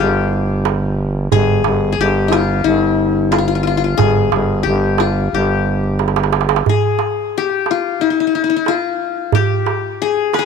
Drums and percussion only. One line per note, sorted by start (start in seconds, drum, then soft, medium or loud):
0.33 darbuka ka soft
0.65 darbuka tek medium
1.32 darbuka dum medium
1.48 darbuka ka soft
1.64 darbuka tek medium
2.15 darbuka ka soft
2.32 darbuka tek medium
2.65 darbuka ka soft
3.32 darbuka tek medium
3.99 darbuka dum medium
4.17 darbuka ka soft
4.32 darbuka tek medium
4.66 darbuka ka soft
4.98 darbuka tek medium
5.33 darbuka ka soft
5.67 darbuka ka soft
5.84 darbuka ka soft
5.99 darbuka tek soft
6.08 darbuka ka medium
6.16 darbuka tek medium
6.24 darbuka ka medium
6.33 darbuka tek medium
6.41 darbuka ka medium
6.49 darbuka tek medium
6.56 darbuka ka medium
6.66 darbuka dum medium
6.83 darbuka ka soft
6.99 darbuka tek soft
7.49 darbuka ka soft
7.66 darbuka tek soft
8.00 darbuka ka soft
8.33 darbuka ka soft
8.66 darbuka tek soft
9.32 darbuka dum medium
9.50 darbuka ka soft
9.66 darbuka tek medium
10.17 darbuka ka soft
10.33 darbuka tek medium